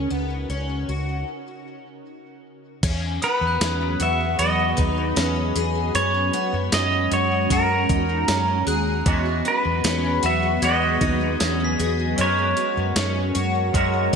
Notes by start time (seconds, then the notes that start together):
Already playing: C#3 C#4 D#4 F#4 A#4
0.10 C#2 B3
0.49 C#2 C#4
0.88 C#2 F#4
2.83 E2 F#3 B3 C#4 F#4 G#4 B4, kick, closed hi-hat, crash
3.22 B3 B4 D#6, closed hi-hat
3.41 E2
3.47 F#6
3.61 E2 C#4, snare, closed hi-hat, tambourine
4.00 E2 F#4 E5, closed hi-hat
4.39 E2 F#4 D#5 B5, closed hi-hat
4.77 D#2 D#4, kick, closed hi-hat
5.16 E2 C#4, snare, closed hi-hat, tambourine
5.56 E2 G#4, closed hi-hat
5.95 F#2 G#3 C#4 C#5, closed hi-hat
6.33 B3, closed hi-hat
6.53 F#2
6.72 F#2 C#4 D#5, snare, closed hi-hat, tambourine
7.12 F#2 F#4 C#5, closed hi-hat
7.50 F#2 F#4 A#4, kick, closed hi-hat
7.89 E2 D#4, kick, closed hi-hat
8.28 F#2 C#4, snare, closed hi-hat, tambourine
8.67 D#2 G#4 F#6, closed hi-hat
9.06 E2 E3 F#3 G#3 B3 C#4 F#4 G#4 B4, kick, closed hi-hat
9.45 G#3 B3 F#4 B4, closed hi-hat
9.65 E2
9.84 E2 C#4, snare, closed hi-hat, tambourine
10.23 E2 F#4 E5, closed hi-hat
10.62 E2 G#3 B3 F#4 D#5 G#6, closed hi-hat
11.01 D#2 D#4, kick, closed hi-hat
11.40 E2 C#4 G#6, snare, closed hi-hat, tambourine
11.64 B6
11.79 E2 G#4, closed hi-hat
12.16 F#2 F#3 G#3 C#4 A#4, closed hi-hat
12.20 F#4 A#4 C#5
12.57 B3, closed hi-hat
12.77 F#2
12.96 F#2 C#4, snare, closed hi-hat, tambourine
13.35 F#2 F#4, closed hi-hat
13.73 F#2 F#3 G#3 C#4 F#4 A#4, kick, closed hi-hat